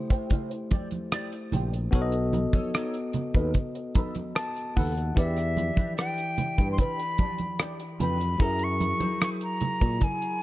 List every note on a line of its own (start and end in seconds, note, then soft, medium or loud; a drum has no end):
0.00 1.88 A3 medium
0.00 1.88 E4 medium
0.00 1.89 G4 medium
0.00 1.90 C5 medium
0.10 0.27 E4 soft
0.10 0.27 G4 medium
0.10 0.26 C5 medium
0.10 kick medium
0.10 closed hi-hat soft
0.30 0.51 E4 medium
0.30 0.51 G4 medium
0.30 0.50 C5 medium
0.30 kick medium
0.30 closed hi-hat medium
0.30 muted conga soft
0.30 low conga soft
0.51 muted clean electric guitar stroke soft
0.51 closed hi-hat soft
0.71 0.87 E4 medium
0.71 0.88 G4 medium
0.71 0.88 D5 medium
0.71 kick medium
0.71 closed hi-hat medium
0.71 muted conga soft
0.71 high conga medium
0.91 muted clean electric guitar stroke soft
0.91 closed hi-hat medium
0.91 high conga medium
1.12 1.32 E4 medium
1.12 1.33 G4 medium
1.12 1.32 D5 medium
1.12 cross-stick medium
1.12 closed hi-hat medium
1.12 muted conga soft
1.32 muted clean electric guitar stroke soft
1.32 closed hi-hat soft
1.52 1.88 A#1 medium
1.52 1.68 E4 soft
1.52 1.69 G4 medium
1.52 1.69 C5 medium
1.52 closed hi-hat medium
1.52 muted conga soft
1.52 low conga medium
1.73 muted clean electric guitar stroke soft
1.73 closed hi-hat soft
1.91 2.45 B1 loud
1.91 5.12 B3 medium
1.91 2.13 D#4 medium
1.91 5.12 F#4 medium
1.91 5.13 A4 medium
1.91 2.13 A4 medium
1.91 2.12 B4 medium
1.91 kick loud
1.91 closed hi-hat medium
1.95 2.00 C#5 medium
2.02 5.17 D#5 medium
2.12 muted clean electric guitar stroke soft
2.12 closed hi-hat medium
2.33 muted clean electric guitar stroke soft
2.33 closed hi-hat medium
2.33 muted conga soft
2.33 high conga medium
2.53 2.70 D#4 soft
2.53 2.70 A4 soft
2.53 2.70 C#5 soft
2.53 kick medium
2.53 closed hi-hat soft
2.53 high conga medium
2.74 2.94 D#4 medium
2.74 2.95 A4 medium
2.74 2.95 C#5 medium
2.74 cross-stick medium
2.74 closed hi-hat medium
2.74 muted conga soft
2.94 closed hi-hat soft
3.13 muted clean electric guitar stroke soft
3.13 muted fingered electric bass stroke soft
3.13 closed hi-hat medium
3.13 muted conga soft
3.13 low conga medium
3.34 3.52 D#2 medium
3.34 3.51 D#4 soft
3.34 3.51 A4 medium
3.34 3.50 B4 medium
3.34 kick medium
3.34 closed hi-hat soft
3.54 muted clean electric guitar stroke soft
3.54 kick medium
3.54 closed hi-hat medium
3.54 muted conga soft
3.54 low conga medium
3.75 muted clean electric guitar stroke soft
3.75 closed hi-hat soft
3.95 4.15 D#4 medium
3.95 4.15 A4 medium
3.95 4.14 B4 medium
3.95 kick medium
3.95 closed hi-hat medium
3.95 muted conga soft
3.95 high conga medium
4.15 muted clean electric guitar stroke soft
4.15 closed hi-hat soft
4.15 high conga medium
4.35 4.73 A5 medium
4.35 muted clean electric guitar stroke soft
4.35 cross-stick medium
4.35 closed hi-hat medium
4.56 closed hi-hat soft
4.76 5.11 D#2 medium
4.76 4.92 D#4 medium
4.76 4.93 A4 medium
4.76 4.93 B4 medium
4.76 5.14 F#5 medium
4.76 kick medium
4.76 open hi-hat medium
4.76 muted conga soft
4.76 low conga medium
4.97 muted clean electric guitar stroke soft
4.97 closed hi-hat soft
5.15 5.69 E2 loud
5.15 8.35 E3 medium
5.15 5.37 D4 medium
5.15 8.36 E4 medium
5.15 5.37 G4 medium
5.15 8.37 G4 medium
5.15 5.36 B4 medium
5.15 5.94 E5 medium
5.15 kick loud
5.15 closed hi-hat medium
5.19 8.37 D5 medium
5.37 muted clean electric guitar stroke soft
5.37 cross-stick soft
5.37 closed hi-hat soft
5.57 muted clean electric guitar stroke soft
5.57 closed hi-hat medium
5.57 high conga medium
5.77 5.94 D4 soft
5.77 5.93 G4 soft
5.77 5.93 B4 medium
5.77 kick medium
5.77 closed hi-hat soft
5.77 high conga medium
5.97 6.17 D4 medium
5.97 6.18 G4 medium
5.97 6.18 B4 medium
5.97 6.68 G5 medium
5.97 cross-stick medium
5.97 closed hi-hat medium
6.18 closed hi-hat soft
6.38 muted clean electric guitar stroke soft
6.38 muted fingered electric bass stroke soft
6.38 closed hi-hat medium
6.38 muted conga soft
6.38 low conga medium
6.58 6.76 G2 medium
6.58 6.75 D4 soft
6.58 6.74 G4 soft
6.58 6.74 B4 soft
6.58 kick medium
6.58 closed hi-hat soft
6.72 6.81 C6 medium
6.78 6.98 D4 medium
6.78 6.99 G4 medium
6.78 6.98 B4 medium
6.78 7.60 B5 medium
6.78 kick medium
6.78 closed hi-hat medium
6.78 muted conga soft
6.78 low conga medium
6.99 muted clean electric guitar stroke soft
6.99 closed hi-hat soft
7.18 7.35 D4 medium
7.18 7.35 G4 medium
7.18 7.35 D5 medium
7.18 kick medium
7.18 closed hi-hat medium
7.18 muted conga soft
7.18 high conga medium
7.38 muted clean electric guitar stroke soft
7.38 closed hi-hat soft
7.38 high conga medium
7.59 7.79 D4 medium
7.59 7.79 G4 medium
7.59 7.79 D5 medium
7.59 cross-stick loud
7.59 closed hi-hat medium
7.59 muted conga soft
7.79 muted clean electric guitar stroke soft
7.79 closed hi-hat soft
8.00 8.35 F2 medium
8.00 8.15 D4 soft
8.00 8.16 G4 medium
8.00 8.16 B4 medium
8.00 8.44 B5 medium
8.00 closed hi-hat medium
8.00 muted conga soft
8.00 low conga medium
8.20 muted clean electric guitar stroke soft
8.20 closed hi-hat soft
8.38 8.92 F#2 medium
8.38 10.43 F#3 medium
8.38 10.43 E4 medium
8.38 8.60 E4 medium
8.38 10.43 G#4 medium
8.38 8.60 G#4 medium
8.38 8.59 A#4 medium
8.38 8.65 A#5 medium
8.38 kick loud
8.38 closed hi-hat medium
8.42 10.43 A#4 medium
8.59 muted clean electric guitar stroke soft
8.59 closed hi-hat soft
8.64 9.23 C#6 loud
8.80 muted clean electric guitar stroke soft
8.80 closed hi-hat medium
8.80 high conga medium
9.00 9.17 E4 soft
9.00 9.17 G#4 soft
9.00 9.16 C5 medium
9.00 closed hi-hat soft
9.00 high conga medium
9.20 9.41 E4 medium
9.20 9.41 G#4 medium
9.20 9.42 C5 medium
9.20 9.29 C#6 medium
9.20 cross-stick medium
9.20 closed hi-hat medium
9.20 muted conga soft
9.41 10.05 A#5 medium
9.41 closed hi-hat soft
9.61 muted clean electric guitar stroke soft
9.61 muted fingered electric bass stroke soft
9.61 closed hi-hat medium
9.61 low conga medium
9.81 9.99 A#2 medium
9.81 9.98 E4 soft
9.81 9.98 G#4 soft
9.81 9.97 A#4 medium
9.81 kick medium
9.81 closed hi-hat soft
10.01 10.38 E4 medium
10.01 10.39 G#4 medium
10.01 10.39 A#4 medium
10.01 10.43 G#5 medium
10.01 kick medium
10.01 closed hi-hat medium
10.01 low conga medium
10.22 closed hi-hat soft